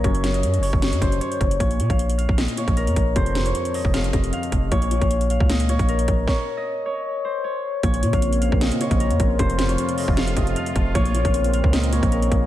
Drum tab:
HH |xxxxxxo-xxxxxxxx|xxxxxxx-xxxxxxx-|xxxxxxo-xxxxxxx-|xxxxxxx-xxxxxxx-|
SD |--o-----o-------|--------o-------|--o-----o-------|--------o-------|
BD |o------o--o---o-|o--o---o---o--o-|o------o--o---o-|o--o---o---o--o-|

HH |----------------|xxxxxxx-xxxxxxx-|xxxxxxo-xxxxxxx-|xxxxxxx-xxxxxxx-|
SD |o---------------|--------o-------|--o-----o-------|--------o-------|
BD |o---------------|o--o---o---o--o-|o------o--o---o-|o--o---o---o--o-|